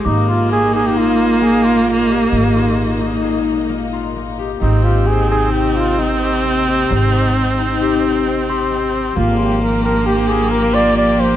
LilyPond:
<<
  \new Staff \with { instrumentName = "Glockenspiel" } { \time 5/4 \key bes \mixolydian \tempo 4 = 132 d'''4. r2. r8 | r1 r4 | r1 r4 | r2. r8 c'''4. |
r2 r8 d'''4. r4 | }
  \new Staff \with { instrumentName = "Flugelhorn" } { \time 5/4 \key bes \mixolydian ees'8 f'8 aes'8 aes'16 g'16 f'4 aes'8 f'4 r8 | r1 r4 | ees'8 f'8 aes'8 aes'8 g'8 f'8 ees'4. r8 | r1 r4 |
f'8 g'8 bes'8 bes'8 g'8 aes'8 bes'8 d''8 d''8 c''8 | }
  \new Staff \with { instrumentName = "Harp" } { \time 5/4 \key bes \mixolydian bes8 f'4 ees'8 aes'4 bes8 f'8 bes8 g'8 | bes8 f'4 ees'8 aes'4 bes8 f'8 bes8 g'8 | c'8 g'4 ees'8 g'4 c'8 g'8 c'8 g'8 | c'8 g'4 ees'8 g'4 c'8 g'8 c'8 g'8 |
bes8 f'4 d'8 g'4 bes8 f'8 bes8 g'8 | }
  \new Staff \with { instrumentName = "String section" } { \time 5/4 \key bes \mixolydian << { <bes, ees'>1~ <bes, ees'>4~ | <bes, ees'>1~ <bes, ees'>4 | <c ees'>1~ <c ees'>4~ | <c ees'>1~ <c ees'>4 |
<f g'>1~ <f g'>4 | } \\ { aes1~ aes4~ | aes1~ aes4 | bes1~ bes4 | c'1~ c'4 |
bes1~ bes4 | } >> }
  \new Staff \with { instrumentName = "Viola" } { \time 5/4 \key bes \mixolydian bes1~ bes4~ | bes1~ bes8 r8 | c'1~ c'4~ | c'1~ c'4 |
bes1~ bes4 | }
  \new Staff \with { instrumentName = "Upright bass" } { \clef bass \time 5/4 \key bes \mixolydian aes,,1~ aes,,4 | aes,,1~ aes,,4 | aes,,1~ aes,,4 | aes,,1~ aes,,4 |
aes,,1~ aes,,4 | }
>>